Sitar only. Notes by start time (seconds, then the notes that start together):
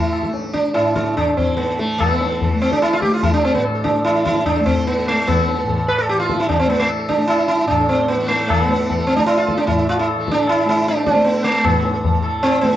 Already playing: E4
0.54 D4
0.74 E4 A4
0.96 E4 A4
1.17 D4 A4
1.37 C4
1.56 B3 A4
1.79 A3 A4
1.98 B3
2.11 A4
2.22 A4
2.32 A4
2.43 A4
2.51 A4
2.62 C4
2.73 D4
2.82 E4
2.93 F4
3.02 G4
3.14 F4
3.23 E4
3.34 D4
3.45 C4
3.55 B3
3.75 A4
3.84 D4
3.95 A4
4.05 E4
4.15 A4
4.26 E4
4.46 D4
4.57 A4
4.66 C4
4.77 A4
4.87 B3
4.99 A4
5.08 A3
5.27 B3
5.37 A4
5.48 A4
5.58 A4
5.69 A4
5.78 A4
5.88 B4
5.98 A4
6.09 G4
6.19 F4
6.29 A4
6.40 E4
6.49 D4
6.55 D4
6.59 C4
6.69 B3
6.79 A3
6.99 A4
7.09 D4
7.18 A4
7.28 E4
7.39 A4
7.48 E4
7.58 A4
7.67 D4
7.81 A4
7.89 C4
8.00 A4
8.08 B3
8.20 A4
8.28 A3
8.41 A4
8.48 A3
8.60 A4
8.65 B3
8.70 A4
8.80 A4
8.90 A4
8.99 A4
9.07 C4
9.17 D4
9.27 E4
9.38 F4
9.49 A4
9.58 D4
9.67 E4
9.79 A4
9.89 F4
9.99 E4
10.09 A4
10.20 A4
10.31 D4
10.39 A4
10.49 E4
10.58 A4
10.69 E4
10.77 A4
10.88 D4
10.95 A4
11.06 C4
11.24 B3
11.34 A4
11.44 A3
11.54 A4
11.64 B3
11.74 A4
11.83 A4
11.94 A4
12.14 A4
12.22 A4
12.43 C4
12.50 A4
12.61 B3
12.71 A4